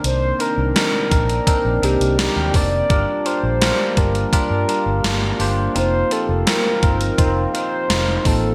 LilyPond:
<<
  \new Staff \with { instrumentName = "Soft synth lead" } { \time 4/4 \key c \minor \tempo 4 = 84 c''8 bes'8 bes'4. g'8 g'8 d''8~ | d''8 c''4 bes'8 bes'4. r8 | c''8 a'8 bes'4. c''4 a'8 | }
  \new Staff \with { instrumentName = "Tine electric piano" } { \time 4/4 \key c \minor <c' d' ees' bes'>8 <c' d' ees' bes'>8 <c' d' ees' bes'>8 <c' d' ees' bes'>8 <c' d' ees' bes'>8 <c' d' ees' bes'>8 <c' d' ees' bes'>8 <c' d' ees' bes'>8 | <d' f' g' bes'>8 <d' f' g' bes'>8 <d' f' g' bes'>8 <d' f' g' bes'>8 <d' f' g' bes'>8 <d' f' g' bes'>8 <d' f' g' bes'>8 <d' f' g' c''>8 | <c' ees' f' bes'>8 <c' ees' f' g'>8 <c' ees' f' bes'>8 <c' ees' f' bes'>8 <c' ees' f' c''>8 <c' ees' f' bes'>8 <c' ees' f' bes'>8 <bes c' ees' f'>8 | }
  \new Staff \with { instrumentName = "Analog synth pad" } { \time 4/4 \key c \minor << { <c bes>1 | <g f'>1 | <f c' ees'>1 | } \\ { <ees d''>1 | bes1~ | bes1 | } >> }
  \new Staff \with { instrumentName = "Fingered electric bass" } { \clef bass \time 4/4 \key c \minor c,8 r16 c,16 r8 bes,,8 r16 bes,,16 c,16 c,8 ees,16 f,,8 | g,,16 r8 bes,,8 r16 g,,8 r16 g,16 r16 g,,16 r8 g,,8 | f,,8 r16 f,,16 r8 g,,8 f,,8 r8 f,,8 a,,8 | }
  \new DrumStaff \with { instrumentName = "Drums" } \drummode { \time 4/4 hh8 hh8 <hh sn>8 <hh bd>16 hh16 <hh bd>8 hh16 hh16 <hh sn>8 <hho bd>8 | <hh bd>8 hh8 <hh sn>8 <hh bd>16 hh16 <hh bd>8 hh8 <hh sn>8 hho8 | hh8 hh8 <hh sn>8 <hh bd>16 hh16 <hh bd>8 hh8 <hh sn>8 <hho bd>8 | }
>>